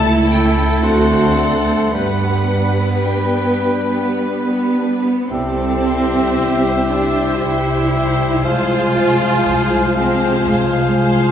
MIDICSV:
0, 0, Header, 1, 11, 480
1, 0, Start_track
1, 0, Key_signature, 1, "major"
1, 0, Tempo, 1077199
1, 862, Time_signature, 3, 2, 24, 8
1, 862, Tempo, 1123596
1, 2302, Key_signature, 0, "major"
1, 2302, Tempo, 1052632
1, 3262, Tempo, 1023891
1, 5093, End_track
2, 0, Start_track
2, 0, Title_t, "Flute"
2, 0, Program_c, 0, 73
2, 2298, Note_on_c, 0, 79, 52
2, 3242, Note_off_c, 0, 79, 0
2, 3261, Note_on_c, 0, 79, 41
2, 3746, Note_on_c, 0, 80, 53
2, 3753, Note_off_c, 0, 79, 0
2, 4705, Note_off_c, 0, 80, 0
2, 4708, Note_on_c, 0, 80, 51
2, 5093, Note_off_c, 0, 80, 0
2, 5093, End_track
3, 0, Start_track
3, 0, Title_t, "Oboe"
3, 0, Program_c, 1, 68
3, 0, Note_on_c, 1, 69, 48
3, 65, Note_off_c, 1, 69, 0
3, 134, Note_on_c, 1, 69, 44
3, 368, Note_off_c, 1, 69, 0
3, 371, Note_on_c, 1, 72, 49
3, 865, Note_on_c, 1, 71, 37
3, 871, Note_off_c, 1, 72, 0
3, 1339, Note_off_c, 1, 71, 0
3, 1342, Note_on_c, 1, 71, 37
3, 2145, Note_off_c, 1, 71, 0
3, 2304, Note_on_c, 1, 76, 42
3, 3246, Note_off_c, 1, 76, 0
3, 3262, Note_on_c, 1, 76, 48
3, 3746, Note_on_c, 1, 77, 46
3, 3753, Note_off_c, 1, 76, 0
3, 4703, Note_off_c, 1, 77, 0
3, 4706, Note_on_c, 1, 77, 56
3, 5093, Note_off_c, 1, 77, 0
3, 5093, End_track
4, 0, Start_track
4, 0, Title_t, "Violin section"
4, 0, Program_c, 2, 48
4, 0, Note_on_c, 2, 81, 99
4, 134, Note_on_c, 2, 79, 65
4, 137, Note_off_c, 2, 81, 0
4, 372, Note_on_c, 2, 78, 73
4, 373, Note_off_c, 2, 79, 0
4, 851, Note_off_c, 2, 78, 0
4, 864, Note_on_c, 2, 78, 64
4, 1331, Note_off_c, 2, 78, 0
4, 1337, Note_on_c, 2, 79, 44
4, 1820, Note_off_c, 2, 79, 0
4, 2297, Note_on_c, 2, 69, 66
4, 2762, Note_off_c, 2, 69, 0
4, 2780, Note_on_c, 2, 67, 47
4, 3255, Note_on_c, 2, 72, 60
4, 3261, Note_off_c, 2, 67, 0
4, 4225, Note_off_c, 2, 72, 0
4, 4227, Note_on_c, 2, 68, 51
4, 4464, Note_off_c, 2, 68, 0
4, 4468, Note_on_c, 2, 67, 51
4, 4702, Note_off_c, 2, 67, 0
4, 4703, Note_on_c, 2, 65, 44
4, 4943, Note_off_c, 2, 65, 0
4, 4947, Note_on_c, 2, 68, 53
4, 5093, Note_off_c, 2, 68, 0
4, 5093, End_track
5, 0, Start_track
5, 0, Title_t, "Viola section"
5, 0, Program_c, 3, 48
5, 0, Note_on_c, 3, 57, 51
5, 0, Note_on_c, 3, 64, 54
5, 373, Note_on_c, 3, 60, 47
5, 374, Note_off_c, 3, 64, 0
5, 860, Note_off_c, 3, 57, 0
5, 860, Note_on_c, 3, 55, 44
5, 860, Note_on_c, 3, 59, 40
5, 861, Note_off_c, 3, 60, 0
5, 2196, Note_off_c, 3, 55, 0
5, 2213, Note_off_c, 3, 59, 0
5, 2541, Note_on_c, 3, 72, 37
5, 2542, Note_on_c, 3, 67, 35
5, 3012, Note_off_c, 3, 72, 0
5, 3013, Note_off_c, 3, 67, 0
5, 3021, Note_on_c, 3, 72, 40
5, 3022, Note_on_c, 3, 67, 40
5, 3496, Note_off_c, 3, 72, 0
5, 3497, Note_off_c, 3, 67, 0
5, 3506, Note_on_c, 3, 67, 39
5, 3506, Note_on_c, 3, 72, 38
5, 3741, Note_off_c, 3, 67, 0
5, 3742, Note_off_c, 3, 72, 0
5, 3747, Note_on_c, 3, 68, 46
5, 3747, Note_on_c, 3, 72, 47
5, 3978, Note_off_c, 3, 68, 0
5, 3979, Note_off_c, 3, 72, 0
5, 3984, Note_on_c, 3, 68, 41
5, 3985, Note_on_c, 3, 72, 39
5, 4458, Note_off_c, 3, 68, 0
5, 4459, Note_off_c, 3, 72, 0
5, 4466, Note_on_c, 3, 68, 44
5, 4467, Note_on_c, 3, 72, 38
5, 4933, Note_off_c, 3, 68, 0
5, 4934, Note_off_c, 3, 72, 0
5, 4941, Note_on_c, 3, 68, 39
5, 4943, Note_on_c, 3, 72, 42
5, 5093, Note_off_c, 3, 68, 0
5, 5093, Note_off_c, 3, 72, 0
5, 5093, End_track
6, 0, Start_track
6, 0, Title_t, "Clarinet"
6, 0, Program_c, 4, 71
6, 0, Note_on_c, 4, 64, 50
6, 366, Note_on_c, 4, 62, 52
6, 373, Note_off_c, 4, 64, 0
6, 851, Note_off_c, 4, 62, 0
6, 853, Note_on_c, 4, 62, 42
6, 1326, Note_off_c, 4, 62, 0
6, 1333, Note_on_c, 4, 62, 37
6, 2140, Note_off_c, 4, 62, 0
6, 2300, Note_on_c, 4, 67, 48
6, 3243, Note_off_c, 4, 67, 0
6, 3258, Note_on_c, 4, 67, 46
6, 3734, Note_off_c, 4, 67, 0
6, 3739, Note_on_c, 4, 72, 48
6, 4685, Note_off_c, 4, 72, 0
6, 4703, Note_on_c, 4, 72, 53
6, 5093, Note_off_c, 4, 72, 0
6, 5093, End_track
7, 0, Start_track
7, 0, Title_t, "Cello section"
7, 0, Program_c, 5, 48
7, 0, Note_on_c, 5, 64, 53
7, 371, Note_on_c, 5, 66, 51
7, 373, Note_off_c, 5, 64, 0
7, 608, Note_off_c, 5, 66, 0
7, 615, Note_on_c, 5, 69, 46
7, 862, Note_off_c, 5, 69, 0
7, 863, Note_on_c, 5, 71, 46
7, 1819, Note_on_c, 5, 59, 53
7, 1822, Note_off_c, 5, 71, 0
7, 2284, Note_off_c, 5, 59, 0
7, 2301, Note_on_c, 5, 60, 73
7, 3022, Note_off_c, 5, 60, 0
7, 3024, Note_on_c, 5, 62, 59
7, 3231, Note_off_c, 5, 62, 0
7, 3234, Note_on_c, 5, 65, 43
7, 3264, Note_off_c, 5, 65, 0
7, 3265, Note_on_c, 5, 64, 66
7, 3744, Note_on_c, 5, 65, 81
7, 3748, Note_off_c, 5, 64, 0
7, 4468, Note_off_c, 5, 65, 0
7, 4468, Note_on_c, 5, 60, 65
7, 4703, Note_off_c, 5, 60, 0
7, 4707, Note_on_c, 5, 56, 58
7, 4944, Note_off_c, 5, 56, 0
7, 5093, End_track
8, 0, Start_track
8, 0, Title_t, "Violin section"
8, 0, Program_c, 6, 48
8, 0, Note_on_c, 6, 69, 56
8, 25, Note_on_c, 6, 57, 46
8, 141, Note_off_c, 6, 57, 0
8, 142, Note_on_c, 6, 61, 43
8, 259, Note_off_c, 6, 61, 0
8, 262, Note_on_c, 6, 64, 48
8, 373, Note_on_c, 6, 57, 41
8, 378, Note_off_c, 6, 64, 0
8, 485, Note_off_c, 6, 57, 0
8, 492, Note_on_c, 6, 60, 45
8, 614, Note_off_c, 6, 60, 0
8, 617, Note_on_c, 6, 62, 42
8, 731, Note_on_c, 6, 60, 38
8, 738, Note_off_c, 6, 62, 0
8, 849, Note_off_c, 6, 69, 0
8, 859, Note_off_c, 6, 60, 0
8, 863, Note_on_c, 6, 55, 40
8, 866, Note_on_c, 6, 71, 40
8, 975, Note_off_c, 6, 55, 0
8, 984, Note_on_c, 6, 59, 34
8, 1097, Note_on_c, 6, 62, 30
8, 1103, Note_off_c, 6, 59, 0
8, 1219, Note_off_c, 6, 62, 0
8, 1222, Note_on_c, 6, 59, 35
8, 1340, Note_on_c, 6, 55, 39
8, 1341, Note_off_c, 6, 59, 0
8, 1459, Note_off_c, 6, 55, 0
8, 1463, Note_on_c, 6, 59, 34
8, 1581, Note_off_c, 6, 59, 0
8, 1586, Note_on_c, 6, 62, 30
8, 1703, Note_off_c, 6, 62, 0
8, 1706, Note_on_c, 6, 59, 29
8, 1824, Note_off_c, 6, 59, 0
8, 1826, Note_on_c, 6, 55, 29
8, 1945, Note_off_c, 6, 55, 0
8, 1947, Note_on_c, 6, 59, 33
8, 2067, Note_off_c, 6, 59, 0
8, 2077, Note_on_c, 6, 62, 31
8, 2192, Note_off_c, 6, 62, 0
8, 2199, Note_off_c, 6, 71, 0
8, 2200, Note_on_c, 6, 59, 31
8, 2309, Note_off_c, 6, 59, 0
8, 2545, Note_on_c, 6, 72, 38
8, 2550, Note_on_c, 6, 76, 39
8, 3014, Note_off_c, 6, 72, 0
8, 3017, Note_off_c, 6, 76, 0
8, 3028, Note_on_c, 6, 76, 41
8, 3030, Note_on_c, 6, 72, 38
8, 3500, Note_off_c, 6, 76, 0
8, 3501, Note_off_c, 6, 72, 0
8, 3509, Note_on_c, 6, 72, 44
8, 3510, Note_on_c, 6, 76, 43
8, 3742, Note_off_c, 6, 72, 0
8, 3743, Note_off_c, 6, 76, 0
8, 3743, Note_on_c, 6, 77, 42
8, 3747, Note_on_c, 6, 72, 39
8, 3980, Note_off_c, 6, 77, 0
8, 3982, Note_off_c, 6, 72, 0
8, 3993, Note_on_c, 6, 72, 42
8, 3993, Note_on_c, 6, 77, 39
8, 4463, Note_off_c, 6, 72, 0
8, 4463, Note_off_c, 6, 77, 0
8, 4471, Note_on_c, 6, 72, 39
8, 4472, Note_on_c, 6, 77, 39
8, 4935, Note_off_c, 6, 77, 0
8, 4936, Note_off_c, 6, 72, 0
8, 4941, Note_on_c, 6, 77, 47
8, 4942, Note_on_c, 6, 72, 42
8, 5093, Note_off_c, 6, 72, 0
8, 5093, Note_off_c, 6, 77, 0
8, 5093, End_track
9, 0, Start_track
9, 0, Title_t, "French horn section"
9, 0, Program_c, 7, 60
9, 0, Note_on_c, 7, 57, 51
9, 0, Note_on_c, 7, 64, 46
9, 355, Note_off_c, 7, 64, 0
9, 362, Note_off_c, 7, 57, 0
9, 369, Note_on_c, 7, 62, 48
9, 372, Note_on_c, 7, 60, 47
9, 857, Note_on_c, 7, 59, 39
9, 861, Note_off_c, 7, 60, 0
9, 2141, Note_off_c, 7, 59, 0
9, 2157, Note_off_c, 7, 62, 0
9, 2304, Note_on_c, 7, 64, 45
9, 2308, Note_on_c, 7, 55, 47
9, 3729, Note_off_c, 7, 64, 0
9, 3731, Note_off_c, 7, 55, 0
9, 3751, Note_on_c, 7, 56, 44
9, 3751, Note_on_c, 7, 65, 51
9, 5093, Note_off_c, 7, 56, 0
9, 5093, Note_off_c, 7, 65, 0
9, 5093, End_track
10, 0, Start_track
10, 0, Title_t, "Bassoon"
10, 0, Program_c, 8, 70
10, 0, Note_on_c, 8, 57, 51
10, 295, Note_off_c, 8, 57, 0
10, 371, Note_on_c, 8, 57, 48
10, 850, Note_off_c, 8, 57, 0
10, 861, Note_on_c, 8, 55, 41
10, 1330, Note_off_c, 8, 55, 0
10, 1343, Note_on_c, 8, 55, 37
10, 2145, Note_off_c, 8, 55, 0
10, 2302, Note_on_c, 8, 55, 45
10, 3244, Note_off_c, 8, 55, 0
10, 3265, Note_on_c, 8, 55, 42
10, 3749, Note_on_c, 8, 53, 49
10, 3756, Note_off_c, 8, 55, 0
10, 4703, Note_off_c, 8, 53, 0
10, 4706, Note_on_c, 8, 53, 46
10, 5093, Note_off_c, 8, 53, 0
10, 5093, End_track
11, 0, Start_track
11, 0, Title_t, "Double bass section"
11, 0, Program_c, 10, 48
11, 0, Note_on_c, 10, 37, 61
11, 295, Note_off_c, 10, 37, 0
11, 376, Note_on_c, 10, 38, 48
11, 779, Note_off_c, 10, 38, 0
11, 863, Note_on_c, 10, 43, 47
11, 1261, Note_off_c, 10, 43, 0
11, 2300, Note_on_c, 10, 36, 49
11, 2725, Note_off_c, 10, 36, 0
11, 2782, Note_on_c, 10, 36, 51
11, 3205, Note_off_c, 10, 36, 0
11, 3264, Note_on_c, 10, 36, 48
11, 3691, Note_off_c, 10, 36, 0
11, 3744, Note_on_c, 10, 36, 52
11, 4171, Note_off_c, 10, 36, 0
11, 4226, Note_on_c, 10, 36, 53
11, 4650, Note_off_c, 10, 36, 0
11, 4702, Note_on_c, 10, 36, 48
11, 5093, Note_off_c, 10, 36, 0
11, 5093, End_track
0, 0, End_of_file